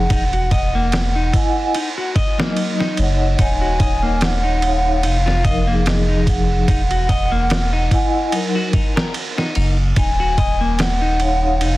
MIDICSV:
0, 0, Header, 1, 6, 480
1, 0, Start_track
1, 0, Key_signature, -6, "minor"
1, 0, Tempo, 821918
1, 60, Time_signature, 4, 2, 24, 8
1, 6875, End_track
2, 0, Start_track
2, 0, Title_t, "Flute"
2, 0, Program_c, 0, 73
2, 0, Note_on_c, 0, 78, 99
2, 1265, Note_off_c, 0, 78, 0
2, 1991, Note_on_c, 0, 80, 127
2, 2474, Note_on_c, 0, 78, 112
2, 2483, Note_off_c, 0, 80, 0
2, 2954, Note_on_c, 0, 77, 110
2, 2962, Note_off_c, 0, 78, 0
2, 3433, Note_on_c, 0, 75, 93
2, 3441, Note_off_c, 0, 77, 0
2, 3672, Note_on_c, 0, 78, 104
2, 3681, Note_off_c, 0, 75, 0
2, 5106, Note_off_c, 0, 78, 0
2, 5828, Note_on_c, 0, 80, 127
2, 6308, Note_on_c, 0, 78, 110
2, 6317, Note_off_c, 0, 80, 0
2, 6794, Note_on_c, 0, 77, 103
2, 6802, Note_off_c, 0, 78, 0
2, 6875, Note_off_c, 0, 77, 0
2, 6875, End_track
3, 0, Start_track
3, 0, Title_t, "Vibraphone"
3, 0, Program_c, 1, 11
3, 0, Note_on_c, 1, 68, 105
3, 61, Note_off_c, 1, 68, 0
3, 775, Note_on_c, 1, 64, 94
3, 783, Note_on_c, 1, 75, 82
3, 788, Note_on_c, 1, 78, 80
3, 796, Note_on_c, 1, 80, 97
3, 890, Note_off_c, 1, 64, 0
3, 894, Note_off_c, 1, 75, 0
3, 897, Note_off_c, 1, 78, 0
3, 901, Note_off_c, 1, 80, 0
3, 923, Note_on_c, 1, 78, 89
3, 930, Note_on_c, 1, 80, 105
3, 1013, Note_off_c, 1, 78, 0
3, 1016, Note_off_c, 1, 80, 0
3, 1389, Note_on_c, 1, 54, 89
3, 1399, Note_on_c, 1, 63, 86
3, 1408, Note_on_c, 1, 75, 103
3, 1712, Note_off_c, 1, 54, 0
3, 1718, Note_off_c, 1, 63, 0
3, 1722, Note_off_c, 1, 75, 0
3, 1724, Note_on_c, 1, 63, 83
3, 1738, Note_on_c, 1, 73, 80
3, 1751, Note_on_c, 1, 75, 76
3, 1765, Note_on_c, 1, 78, 94
3, 2666, Note_off_c, 1, 63, 0
3, 2673, Note_off_c, 1, 73, 0
3, 2680, Note_off_c, 1, 75, 0
3, 2687, Note_off_c, 1, 78, 0
3, 2696, Note_on_c, 1, 63, 81
3, 2703, Note_on_c, 1, 73, 75
3, 2710, Note_on_c, 1, 77, 75
3, 2716, Note_on_c, 1, 78, 90
3, 2799, Note_off_c, 1, 63, 0
3, 2802, Note_off_c, 1, 73, 0
3, 2806, Note_off_c, 1, 77, 0
3, 2809, Note_off_c, 1, 78, 0
3, 2830, Note_on_c, 1, 63, 89
3, 2836, Note_on_c, 1, 73, 77
3, 2843, Note_on_c, 1, 77, 83
3, 2849, Note_on_c, 1, 78, 97
3, 2926, Note_off_c, 1, 63, 0
3, 2929, Note_off_c, 1, 73, 0
3, 2932, Note_off_c, 1, 77, 0
3, 2935, Note_off_c, 1, 78, 0
3, 3177, Note_on_c, 1, 53, 92
3, 3186, Note_on_c, 1, 63, 84
3, 3196, Note_on_c, 1, 70, 95
3, 3279, Note_off_c, 1, 53, 0
3, 3284, Note_off_c, 1, 63, 0
3, 3289, Note_off_c, 1, 70, 0
3, 3320, Note_on_c, 1, 63, 89
3, 3340, Note_on_c, 1, 68, 99
3, 3891, Note_off_c, 1, 63, 0
3, 3901, Note_off_c, 1, 68, 0
3, 4619, Note_on_c, 1, 64, 95
3, 4626, Note_on_c, 1, 75, 82
3, 4632, Note_on_c, 1, 78, 82
3, 4639, Note_on_c, 1, 80, 98
3, 4732, Note_off_c, 1, 64, 0
3, 4736, Note_off_c, 1, 75, 0
3, 4739, Note_off_c, 1, 78, 0
3, 4742, Note_off_c, 1, 80, 0
3, 4752, Note_on_c, 1, 64, 93
3, 4757, Note_on_c, 1, 75, 83
3, 4763, Note_on_c, 1, 78, 87
3, 4770, Note_on_c, 1, 80, 103
3, 4847, Note_off_c, 1, 64, 0
3, 4849, Note_off_c, 1, 75, 0
3, 4853, Note_off_c, 1, 78, 0
3, 4856, Note_off_c, 1, 80, 0
3, 4858, Note_on_c, 1, 54, 85
3, 4868, Note_on_c, 1, 63, 81
3, 4877, Note_on_c, 1, 70, 103
3, 5080, Note_off_c, 1, 54, 0
3, 5085, Note_off_c, 1, 63, 0
3, 5089, Note_off_c, 1, 70, 0
3, 6537, Note_on_c, 1, 63, 82
3, 6544, Note_on_c, 1, 73, 71
3, 6550, Note_on_c, 1, 77, 75
3, 6557, Note_on_c, 1, 78, 88
3, 6639, Note_off_c, 1, 63, 0
3, 6643, Note_off_c, 1, 73, 0
3, 6646, Note_off_c, 1, 77, 0
3, 6649, Note_off_c, 1, 78, 0
3, 6671, Note_on_c, 1, 63, 93
3, 6676, Note_on_c, 1, 73, 80
3, 6684, Note_on_c, 1, 77, 81
3, 6691, Note_on_c, 1, 78, 95
3, 6767, Note_off_c, 1, 63, 0
3, 6769, Note_off_c, 1, 73, 0
3, 6773, Note_off_c, 1, 77, 0
3, 6776, Note_off_c, 1, 78, 0
3, 6875, End_track
4, 0, Start_track
4, 0, Title_t, "Clean electric guitar"
4, 0, Program_c, 2, 27
4, 63, Note_on_c, 2, 63, 83
4, 137, Note_off_c, 2, 63, 0
4, 195, Note_on_c, 2, 66, 77
4, 290, Note_off_c, 2, 66, 0
4, 302, Note_on_c, 2, 75, 98
4, 427, Note_off_c, 2, 75, 0
4, 438, Note_on_c, 2, 58, 73
4, 662, Note_off_c, 2, 58, 0
4, 674, Note_on_c, 2, 63, 84
4, 775, Note_off_c, 2, 63, 0
4, 1023, Note_on_c, 2, 63, 75
4, 1097, Note_off_c, 2, 63, 0
4, 1154, Note_on_c, 2, 66, 72
4, 1250, Note_off_c, 2, 66, 0
4, 1260, Note_on_c, 2, 75, 103
4, 1386, Note_off_c, 2, 75, 0
4, 1395, Note_on_c, 2, 58, 75
4, 1621, Note_off_c, 2, 58, 0
4, 1633, Note_on_c, 2, 63, 76
4, 1735, Note_off_c, 2, 63, 0
4, 1979, Note_on_c, 2, 63, 84
4, 2055, Note_off_c, 2, 63, 0
4, 2111, Note_on_c, 2, 66, 79
4, 2209, Note_off_c, 2, 66, 0
4, 2219, Note_on_c, 2, 75, 99
4, 2345, Note_off_c, 2, 75, 0
4, 2351, Note_on_c, 2, 58, 79
4, 2578, Note_off_c, 2, 58, 0
4, 2592, Note_on_c, 2, 63, 80
4, 2694, Note_off_c, 2, 63, 0
4, 2939, Note_on_c, 2, 63, 77
4, 3015, Note_off_c, 2, 63, 0
4, 3072, Note_on_c, 2, 65, 78
4, 3169, Note_off_c, 2, 65, 0
4, 3180, Note_on_c, 2, 75, 103
4, 3306, Note_off_c, 2, 75, 0
4, 3314, Note_on_c, 2, 58, 75
4, 3540, Note_off_c, 2, 58, 0
4, 3554, Note_on_c, 2, 63, 75
4, 3656, Note_off_c, 2, 63, 0
4, 3903, Note_on_c, 2, 63, 83
4, 3977, Note_off_c, 2, 63, 0
4, 4034, Note_on_c, 2, 66, 75
4, 4130, Note_off_c, 2, 66, 0
4, 4141, Note_on_c, 2, 75, 100
4, 4266, Note_off_c, 2, 75, 0
4, 4273, Note_on_c, 2, 58, 80
4, 4500, Note_off_c, 2, 58, 0
4, 4514, Note_on_c, 2, 63, 80
4, 4615, Note_off_c, 2, 63, 0
4, 4863, Note_on_c, 2, 63, 77
4, 4937, Note_off_c, 2, 63, 0
4, 4994, Note_on_c, 2, 66, 75
4, 5090, Note_off_c, 2, 66, 0
4, 5103, Note_on_c, 2, 63, 78
4, 5221, Note_off_c, 2, 63, 0
4, 5234, Note_on_c, 2, 70, 73
4, 5330, Note_off_c, 2, 70, 0
4, 5476, Note_on_c, 2, 63, 73
4, 5571, Note_off_c, 2, 63, 0
4, 5582, Note_on_c, 2, 63, 76
4, 5700, Note_off_c, 2, 63, 0
4, 5824, Note_on_c, 2, 63, 83
4, 5897, Note_off_c, 2, 63, 0
4, 5956, Note_on_c, 2, 66, 81
4, 6051, Note_off_c, 2, 66, 0
4, 6062, Note_on_c, 2, 75, 99
4, 6187, Note_off_c, 2, 75, 0
4, 6195, Note_on_c, 2, 58, 77
4, 6420, Note_off_c, 2, 58, 0
4, 6434, Note_on_c, 2, 63, 79
4, 6535, Note_off_c, 2, 63, 0
4, 6783, Note_on_c, 2, 63, 82
4, 6857, Note_off_c, 2, 63, 0
4, 6875, End_track
5, 0, Start_track
5, 0, Title_t, "Sub bass"
5, 0, Program_c, 3, 38
5, 62, Note_on_c, 3, 28, 101
5, 760, Note_off_c, 3, 28, 0
5, 1741, Note_on_c, 3, 30, 99
5, 1955, Note_off_c, 3, 30, 0
5, 1980, Note_on_c, 3, 27, 103
5, 2940, Note_on_c, 3, 29, 95
5, 2949, Note_off_c, 3, 27, 0
5, 3880, Note_off_c, 3, 29, 0
5, 3902, Note_on_c, 3, 28, 102
5, 4600, Note_off_c, 3, 28, 0
5, 5584, Note_on_c, 3, 30, 104
5, 5796, Note_off_c, 3, 30, 0
5, 5823, Note_on_c, 3, 27, 105
5, 6782, Note_on_c, 3, 29, 97
5, 6790, Note_off_c, 3, 27, 0
5, 6875, Note_off_c, 3, 29, 0
5, 6875, End_track
6, 0, Start_track
6, 0, Title_t, "Drums"
6, 59, Note_on_c, 9, 36, 114
6, 59, Note_on_c, 9, 51, 92
6, 117, Note_off_c, 9, 51, 0
6, 118, Note_off_c, 9, 36, 0
6, 193, Note_on_c, 9, 51, 41
6, 251, Note_off_c, 9, 51, 0
6, 299, Note_on_c, 9, 51, 69
6, 300, Note_on_c, 9, 36, 95
6, 358, Note_off_c, 9, 36, 0
6, 358, Note_off_c, 9, 51, 0
6, 538, Note_on_c, 9, 51, 85
6, 545, Note_on_c, 9, 38, 110
6, 597, Note_off_c, 9, 51, 0
6, 604, Note_off_c, 9, 38, 0
6, 779, Note_on_c, 9, 36, 86
6, 780, Note_on_c, 9, 51, 70
6, 837, Note_off_c, 9, 36, 0
6, 838, Note_off_c, 9, 51, 0
6, 1019, Note_on_c, 9, 51, 91
6, 1077, Note_off_c, 9, 51, 0
6, 1259, Note_on_c, 9, 36, 97
6, 1260, Note_on_c, 9, 51, 66
6, 1318, Note_off_c, 9, 36, 0
6, 1318, Note_off_c, 9, 51, 0
6, 1399, Note_on_c, 9, 38, 115
6, 1458, Note_off_c, 9, 38, 0
6, 1498, Note_on_c, 9, 51, 81
6, 1556, Note_off_c, 9, 51, 0
6, 1638, Note_on_c, 9, 38, 50
6, 1696, Note_off_c, 9, 38, 0
6, 1736, Note_on_c, 9, 51, 72
6, 1795, Note_off_c, 9, 51, 0
6, 1978, Note_on_c, 9, 36, 110
6, 1978, Note_on_c, 9, 51, 94
6, 2036, Note_off_c, 9, 51, 0
6, 2037, Note_off_c, 9, 36, 0
6, 2218, Note_on_c, 9, 36, 94
6, 2218, Note_on_c, 9, 51, 71
6, 2277, Note_off_c, 9, 36, 0
6, 2277, Note_off_c, 9, 51, 0
6, 2459, Note_on_c, 9, 51, 85
6, 2466, Note_on_c, 9, 38, 118
6, 2517, Note_off_c, 9, 51, 0
6, 2524, Note_off_c, 9, 38, 0
6, 2700, Note_on_c, 9, 51, 62
6, 2758, Note_off_c, 9, 51, 0
6, 2939, Note_on_c, 9, 51, 87
6, 2997, Note_off_c, 9, 51, 0
6, 3081, Note_on_c, 9, 38, 44
6, 3140, Note_off_c, 9, 38, 0
6, 3180, Note_on_c, 9, 36, 95
6, 3181, Note_on_c, 9, 51, 67
6, 3239, Note_off_c, 9, 36, 0
6, 3239, Note_off_c, 9, 51, 0
6, 3422, Note_on_c, 9, 51, 82
6, 3429, Note_on_c, 9, 38, 104
6, 3480, Note_off_c, 9, 51, 0
6, 3487, Note_off_c, 9, 38, 0
6, 3661, Note_on_c, 9, 36, 99
6, 3662, Note_on_c, 9, 51, 75
6, 3719, Note_off_c, 9, 36, 0
6, 3721, Note_off_c, 9, 51, 0
6, 3901, Note_on_c, 9, 36, 119
6, 3902, Note_on_c, 9, 51, 83
6, 3959, Note_off_c, 9, 36, 0
6, 3960, Note_off_c, 9, 51, 0
6, 4033, Note_on_c, 9, 51, 44
6, 4092, Note_off_c, 9, 51, 0
6, 4141, Note_on_c, 9, 36, 93
6, 4142, Note_on_c, 9, 51, 73
6, 4199, Note_off_c, 9, 36, 0
6, 4200, Note_off_c, 9, 51, 0
6, 4381, Note_on_c, 9, 51, 91
6, 4388, Note_on_c, 9, 38, 104
6, 4439, Note_off_c, 9, 51, 0
6, 4446, Note_off_c, 9, 38, 0
6, 4621, Note_on_c, 9, 36, 88
6, 4622, Note_on_c, 9, 51, 68
6, 4679, Note_off_c, 9, 36, 0
6, 4680, Note_off_c, 9, 51, 0
6, 4861, Note_on_c, 9, 51, 91
6, 4919, Note_off_c, 9, 51, 0
6, 5099, Note_on_c, 9, 51, 66
6, 5100, Note_on_c, 9, 36, 99
6, 5158, Note_off_c, 9, 51, 0
6, 5159, Note_off_c, 9, 36, 0
6, 5240, Note_on_c, 9, 38, 120
6, 5298, Note_off_c, 9, 38, 0
6, 5340, Note_on_c, 9, 51, 87
6, 5398, Note_off_c, 9, 51, 0
6, 5480, Note_on_c, 9, 38, 52
6, 5538, Note_off_c, 9, 38, 0
6, 5578, Note_on_c, 9, 51, 72
6, 5637, Note_off_c, 9, 51, 0
6, 5819, Note_on_c, 9, 51, 88
6, 5820, Note_on_c, 9, 36, 104
6, 5877, Note_off_c, 9, 51, 0
6, 5878, Note_off_c, 9, 36, 0
6, 6060, Note_on_c, 9, 36, 94
6, 6060, Note_on_c, 9, 51, 67
6, 6118, Note_off_c, 9, 36, 0
6, 6119, Note_off_c, 9, 51, 0
6, 6299, Note_on_c, 9, 51, 87
6, 6306, Note_on_c, 9, 38, 117
6, 6358, Note_off_c, 9, 51, 0
6, 6365, Note_off_c, 9, 38, 0
6, 6539, Note_on_c, 9, 51, 62
6, 6598, Note_off_c, 9, 51, 0
6, 6780, Note_on_c, 9, 51, 91
6, 6838, Note_off_c, 9, 51, 0
6, 6875, End_track
0, 0, End_of_file